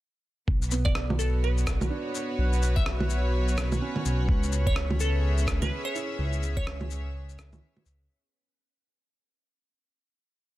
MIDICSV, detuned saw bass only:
0, 0, Header, 1, 2, 480
1, 0, Start_track
1, 0, Tempo, 476190
1, 483, Time_signature, 4, 2, 24, 8
1, 10656, End_track
2, 0, Start_track
2, 0, Title_t, "Detuned saw bass"
2, 0, Program_c, 0, 39
2, 480, Note_on_c, 0, 35, 99
2, 1189, Note_off_c, 0, 35, 0
2, 1207, Note_on_c, 0, 35, 81
2, 1913, Note_off_c, 0, 35, 0
2, 2403, Note_on_c, 0, 35, 94
2, 3110, Note_off_c, 0, 35, 0
2, 3125, Note_on_c, 0, 35, 80
2, 3832, Note_off_c, 0, 35, 0
2, 4086, Note_on_c, 0, 35, 83
2, 4309, Note_off_c, 0, 35, 0
2, 4323, Note_on_c, 0, 37, 96
2, 5031, Note_off_c, 0, 37, 0
2, 5040, Note_on_c, 0, 37, 80
2, 5749, Note_off_c, 0, 37, 0
2, 6235, Note_on_c, 0, 37, 97
2, 6947, Note_off_c, 0, 37, 0
2, 6956, Note_on_c, 0, 37, 83
2, 7667, Note_off_c, 0, 37, 0
2, 7919, Note_on_c, 0, 37, 83
2, 8145, Note_off_c, 0, 37, 0
2, 10656, End_track
0, 0, End_of_file